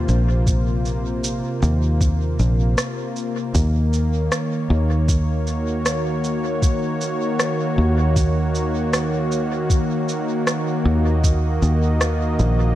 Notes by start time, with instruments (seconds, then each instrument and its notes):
Already playing: analog synth pad C3 A#3 F4 C5
0.09 fingered electric bass A#1, shaker
0.47 kick, shaker
0.86 shaker
1.24 shaker
1.63 fingered electric bass D#2, shaker
2.01 kick, shaker
2.39 fingered electric bass A#1, shaker
2.78 cross-stick, shaker
3.16 shaker
3.55 fingered electric bass D#2, analog synth pad D#3, kick, shaker
3.93 shaker
4.07 analog synth pad C#5
4.32 cross-stick, shaker
4.70 fingered electric bass D#2
5.08 kick, shaker
5.30 analog synth pad F#4
5.47 shaker
5.86 cross-stick, shaker
6.24 shaker
6.62 kick, shaker
7.01 shaker
7.39 cross-stick, shaker
7.78 fingered electric bass D#2
8.16 kick, shaker
8.55 shaker
8.93 cross-stick, shaker
9.32 shaker
9.70 kick, shaker
10.09 shaker
10.47 cross-stick, shaker
10.79 analog synth pad D#5
10.85 fingered electric bass D#2
11.24 kick, shaker
11.62 fingered electric bass D#2, shaker
12.01 cross-stick, shaker
12.39 fingered electric bass A#1, shaker